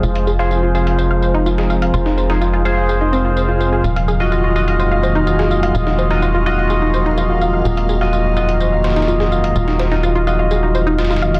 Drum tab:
HH |--x-----------x---------------x-|--------------------------------|--x-----------x---------------x-|--------------------------------|
TB |x---x---x---x---x---x---x---x---|x---x---x---x---x---x---x---x---|x---x---x---x---x---x---x---x---|x---x---x---x---x---x---x---x---|
SD |------o-------------------o-----|--o---o-------------------------|------o-------------------o-----|--o---o-------------------------|

HH |--x-----------x---------------x-|------------------------------x-|
TB |x---x---x---x---x---xxxxx---x---|x---x---x---x---x---x---xxxxx---|
SD |------o-------------oooo--o-----|--o-o-o-----------------oooo----|